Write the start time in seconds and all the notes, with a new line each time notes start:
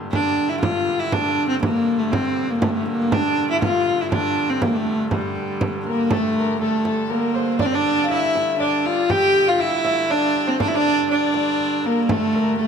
Already playing: G2 D3
0.10 G2 D3 D4, frame drum
0.38 frame drum
0.49 E4
0.62 F4, frame drum
1.00 E4
1.12 D4, frame drum
1.49 C4
1.63 A#3, frame drum
1.88 frame drum
1.99 A3
2.12 C4, frame drum
2.50 A#3
2.62 A3, frame drum
2.69 A#3
2.76 A3
2.88 A#3
3.12 D4, frame drum
3.38 frame drum
3.51 E4
3.62 F4, frame drum
4.01 E4
4.12 D4, frame drum
4.50 C4
4.62 A#3, frame drum
4.75 A3
4.87 frame drum
5.11 G3, frame drum
5.36 frame drum
5.61 frame drum
5.86 A#3 A#4
6.10 G2 D3 A3 A4, frame drum
6.37 A#4
6.60 A3 A4, frame drum
6.85 A4, frame drum
7.10 A#3 A#4, frame drum
7.34 C5, frame drum
7.59 D4 D5, frame drum
7.66 C4
7.73 D4 D5
8.03 F5
8.08 E4 E5, frame drum
8.36 frame drum
8.53 E5
8.59 D4 D5, frame drum
8.86 F4, frame drum
9.10 G4 G5, frame drum
9.47 F4 F5
9.59 E4 E5, frame drum
9.84 E5, frame drum
10.10 D4 D5, frame drum
10.35 frame drum
10.47 C4 C5
10.59 D4 D5, frame drum
10.68 E4
10.73 D4 D5
11.10 D4 D5
11.34 frame drum
11.59 frame drum
11.84 A#3 A#4, frame drum
12.08 G2 D3 A3 A4, frame drum
12.35 A#4
12.59 A3 A4, frame drum